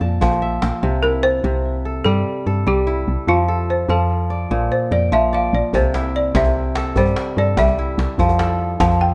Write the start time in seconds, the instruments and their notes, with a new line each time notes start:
Already playing: kora A#2, balafon D5
0.01 fm bass F2, kora A5
0.21 fm bass A#1, kora F3, djembe slap, djembe bass
0.32 djembe tone
0.42 kora E5, djembe slap
0.52 djembe slap
0.62 fm bass A#1, djembe slap
0.83 fm bass C2, kora C3
1.03 kora E4, balafon A#4
1.23 balafon C5
1.44 fm bass C2, kora C3
1.85 kora A4
2.04 fm bass G2, kora G3, balafon A4
2.46 fm bass G2, kora A4
2.67 fm bass C2, kora G3, balafon G4
2.87 kora E4
3.08 fm bass C2
3.27 fm bass F2, kora F3, balafon F4
3.48 kora A4
3.70 balafon C5
3.89 fm bass F2, kora F3, balafon A4
4.30 kora D5
4.51 fm bass A#1, kora A#2
4.72 balafon C5
4.91 fm bass F2, balafon D5, kora G5
5.12 fm bass A#1, kora F3, balafon E5
5.33 kora D5, balafon F5
5.53 fm bass A#1, balafon D5
5.73 fm bass C2, kora C3, balafon C5, djembe bass
5.94 kora E4, djembe slap
6.16 balafon D5
6.35 fm bass C2, kora C3, balafon E5, djembe slap, djembe bass
6.45 djembe slap, djembe tone
6.55 djembe slap
6.75 kora A4, djembe slap
6.96 fm bass G2, kora G3, balafon C5, djembe bass
7.06 djembe tone
7.16 djembe slap
7.27 djembe slap
7.37 fm bass G2, kora A4, balafon D5
7.57 fm bass C2, kora G3, balafon E5, djembe slap, djembe bass
7.68 djembe tone
7.79 kora E4
7.98 fm bass C2, djembe slap
8.18 fm bass F2, kora F3, djembe slap, djembe bass
8.29 djembe tone
8.39 kora A4, djembe slap
8.49 djembe slap
8.60 djembe slap
8.70 djembe slap
8.80 fm bass F2, kora F3, balafon A5, djembe slap, djembe bass
8.90 djembe tone
9.00 balafon G5, djembe slap
9.11 djembe slap